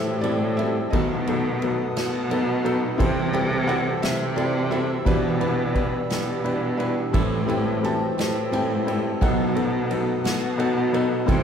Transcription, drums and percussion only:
0.23 ride medium
0.59 ride soft
0.93 kick medium
0.93 ride medium
1.27 ride soft
1.62 ride soft
1.97 snare medium
1.97 ride medium
2.31 ride medium
2.66 ride medium
3.00 kick medium
3.00 ride medium
3.34 ride soft
3.69 ride soft
4.03 snare medium
4.03 ride medium
4.37 ride soft
4.72 ride soft
5.06 kick medium
5.06 ride medium
5.41 ride soft
5.75 kick medium
5.75 ride soft
6.10 snare medium
6.10 ride medium
6.46 ride soft
6.80 ride soft
7.14 kick medium
7.14 ride medium
7.49 ride soft
7.84 ride medium
8.19 snare medium
8.19 ride medium
8.53 ride soft
8.88 ride soft
9.22 kick loud
9.22 ride medium
9.56 ride soft
9.91 ride medium
10.25 snare medium
10.25 ride medium
10.60 ride soft
10.94 ride soft
11.29 kick medium
11.29 ride medium

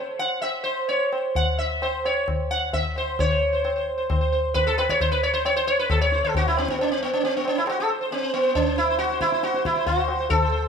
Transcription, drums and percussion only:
0.20 tabla na medium
0.43 tabla na medium
0.89 tabla tin medium
1.13 tabla na medium
1.35 tabla tin medium
1.35 tabla ge medium
1.82 tabla na medium
2.05 tabla na medium
2.28 tabla na medium
2.28 tabla ge medium
2.73 tabla tin medium
2.73 tabla ge medium
2.96 tabla na medium
3.19 tabla tin loud
3.19 tabla ge loud
3.65 tabla na medium
4.10 tabla na medium
4.10 tabla ge medium
4.55 tabla tin medium
4.55 tabla ge medium
4.79 tabla na medium
4.89 tabla ke medium
5.00 tabla tin medium
5.00 tabla ge medium
5.45 tabla na medium
5.90 tabla na medium
5.90 tabla ge medium
6.12 tabla te medium
6.23 tabla ge medium
6.35 tabla tin medium
6.35 tabla ge medium
6.57 tabla na medium
6.69 tabla ke medium
6.79 tabla tin medium
7.24 tabla tin medium
7.45 tabla na medium
7.67 tabla na medium
8.11 tabla tin medium
8.55 tabla tin medium
8.55 tabla ge medium
8.99 tabla te medium
9.10 tabla te medium
9.21 tabla ke medium
9.32 tabla te medium
9.43 tabla te medium
9.54 tabla te medium
9.65 tabla ke medium
9.76 tabla te medium
9.86 tabla tin medium
9.86 tabla ge medium
10.08 tabla na medium
10.30 tabla tin loud
10.30 tabla ge loud

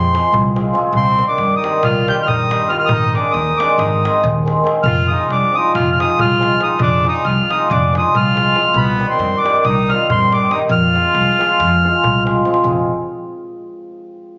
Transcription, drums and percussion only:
0.15 darbuka tek medium
0.34 darbuka dum loud
0.45 darbuka tek soft
0.56 darbuka tek medium
0.66 darbuka tek soft
0.75 darbuka tek medium
0.93 darbuka dum medium
1.19 darbuka tek medium
1.38 darbuka tek medium
1.64 darbuka tek medium
1.83 darbuka tek medium
1.83 darbuka dum medium
2.08 darbuka tek medium
2.28 darbuka dum loud
2.40 darbuka tek soft
2.51 darbuka tek medium
2.61 darbuka tek soft
2.70 darbuka tek medium
2.89 darbuka dum loud
3.03 darbuka tek soft
3.15 darbuka tek medium
3.34 darbuka tek medium
3.47 darbuka tek soft
3.60 darbuka tek loud
3.70 darbuka tek soft
3.79 darbuka tek medium
4.05 darbuka tek loud
4.25 darbuka dum medium
4.48 darbuka tek medium
4.57 darbuka tek soft
4.67 darbuka tek medium
4.76 darbuka tek soft
4.86 darbuka dum loud
5.11 darbuka tek medium
5.30 darbuka tek medium
5.75 darbuka tek medium
5.75 darbuka dum medium
6.00 darbuka tek medium
6.19 darbuka dum loud
6.31 darbuka tek soft
6.43 darbuka tek medium
6.52 darbuka tek soft
6.61 darbuka tek medium
6.79 darbuka dum loud
7.04 darbuka tek medium
7.25 darbuka tek medium
7.51 darbuka tek medium
7.70 darbuka tek medium
7.70 darbuka dum medium
7.95 darbuka tek medium
8.15 darbuka dum loud
8.26 darbuka tek soft
8.37 darbuka tek medium
8.56 darbuka tek medium
8.75 darbuka dum medium
9.00 darbuka tek medium
9.20 darbuka tek medium
9.46 darbuka tek medium
9.65 darbuka tek medium
9.65 darbuka dum medium
9.90 darbuka tek medium
10.10 darbuka dum loud
10.22 darbuka tek soft
10.32 darbuka tek medium
10.42 darbuka tek soft
10.51 darbuka tek medium
10.69 darbuka dum medium
10.83 darbuka tek soft
10.95 darbuka tek medium
11.05 darbuka tek soft
11.15 darbuka tek medium
11.28 darbuka tek soft
11.41 darbuka tek medium
11.51 darbuka tek soft
11.60 darbuka tek medium
11.95 darbuka tek soft
12.04 darbuka dum loud
12.16 darbuka tek soft
12.27 darbuka tek medium
12.36 darbuka dum medium
12.45 darbuka tek medium
12.54 darbuka tek medium
12.64 darbuka dum medium

